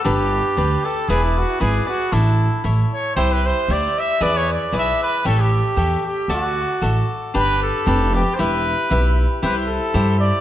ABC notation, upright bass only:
X:1
M:2/4
L:1/8
Q:1/4=115
K:D
V:1 name="Upright bass" clef=bass
G,,,2 D,, z | E,,,2 ^G,,, z | A,,,2 A,,, z | =C,,2 D,, z |
E,,2 B,,, z | A,,,2 E,, z | D,,2 A,,, z | [K:G] G,,,2 =F,,,2 |
E,,,2 B,,,2 | C,,2 G,,2 |]